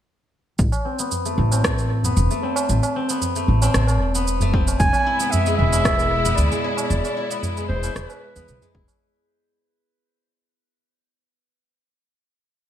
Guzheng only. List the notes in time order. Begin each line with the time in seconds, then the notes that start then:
0.85 C4
0.99 B3
1.25 A3
1.52 C4
2.05 B3
2.31 A3
2.43 C4
2.96 C4
3.10 B3
3.36 A3
3.63 C4
4.15 B3
4.42 A3
4.54 C4
5.06 E4
5.20 B3
5.46 G#3
5.73 E4
6.25 B3
6.51 G#3
6.64 E4
7.17 E4
7.30 B3
7.57 G#3
7.84 E4
8.36 B3
8.62 G#3
8.75 E4